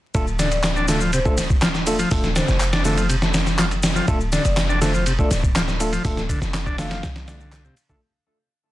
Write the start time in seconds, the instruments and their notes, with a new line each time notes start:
0.15 808-style bass D1, tine electric piano A3 D4 F4 A4, kick, ride, shaker
0.27 shaker
0.39 transistor combo organ D3, vibraphone D5, snare, ride, shaker
0.52 vibraphone D5, ride, shaker
0.64 snare, clap, ride, shaker
0.76 transistor combo organ D4, shaker
0.88 transistor combo organ D3, tine electric piano A3 D4 F4 A4, snare, ride, shaker
1.01 transistor combo organ F3, shaker
1.13 transistor combo organ C3, vibraphone C5, ride, shaker
1.25 tine electric piano A3 D4 F4 A4, vibraphone C5, kick, shaker
1.38 snare, ride, shaker
1.50 kick, shaker
1.62 transistor combo organ F3, snare, clap, ride, shaker
1.75 snare, shaker
1.87 tine electric piano A3 D4 F4 A4, ride, shaker
1.99 transistor combo organ F3, ride, shaker
2.11 808-style bass D1, tine electric piano A3 D4 F4 A4, kick, open hi-hat, shaker
2.24 snare, shaker
2.36 transistor combo organ D3, vibraphone C5, snare, ride, shaker
2.48 808-style bass F1, vibraphone C5, snare, shaker
2.60 clap, ride, shaker
2.73 transistor combo organ D4, snare, ride, shaker
2.85 transistor combo organ D3, tine electric piano A3 D4 F4 A4, snare, ride, shaker
2.97 transistor combo organ F3, ride, shaker
3.09 transistor combo organ C3, ride, shaker
3.22 snare, shaker
3.34 snare, ride, shaker
3.47 snare, shaker
3.59 transistor combo organ F3, snare, clap, ride, shaker
3.71 ride, shaker
3.83 snare, ride, shaker
3.96 transistor combo organ F3, shaker
4.08 808-style bass D1, tine electric piano A3 D4 F4 A4, kick, ride, shaker
4.21 shaker
4.32 transistor combo organ D3, vibraphone D5, snare, ride, shaker
4.45 808-style bass F1, vibraphone D5, ride, shaker
4.57 snare, clap, ride, shaker
4.69 transistor combo organ D4, shaker
4.81 transistor combo organ D3, tine electric piano A3 D4 F4 A4, vibraphone C5, snare, ride, shaker
4.94 transistor combo organ F3, shaker
5.06 transistor combo organ C3, ride, shaker
5.19 tine electric piano A3 D4 F4 A4, vibraphone D5, kick, shaker
5.31 808-style bass D1, snare, ride, shaker
5.43 kick, shaker
5.55 transistor combo organ F3, snare, clap, ride, shaker
5.68 snare, shaker
5.80 tine electric piano A3 D4 F4 A4, ride, shaker
5.92 transistor combo organ F3, ride, shaker
6.05 808-style bass D1, tine electric piano A3 D4 F4 A4, kick, open hi-hat, shaker
6.17 snare, shaker
6.29 transistor combo organ D3, kick, ride, shaker
6.42 808-style bass F1, snare, shaker
6.54 snare, clap, ride, shaker
6.66 transistor combo organ D4, kick, shaker
6.78 transistor combo organ D3, tine electric piano A3 D4 F4 A4, vibraphone F5, snare, ride, shaker
6.91 transistor combo organ F3, vibraphone F5, snare, ride, shaker
7.03 808-style bass C2, transistor combo organ C3, snare, ride, shaker
7.16 snare, ride, shaker
7.28 transistor combo organ D3, tine electric piano A3 D4 F4 D5, snare, ride, shaker
7.40 transistor combo organ D3, shaker
7.52 transistor combo organ D3, snare, clap, ride, shaker
7.65 transistor combo organ C3, shaker
7.77 ride, shaker
7.89 transistor combo organ D3, tine electric piano A3 D4 F4 A4, kick, shaker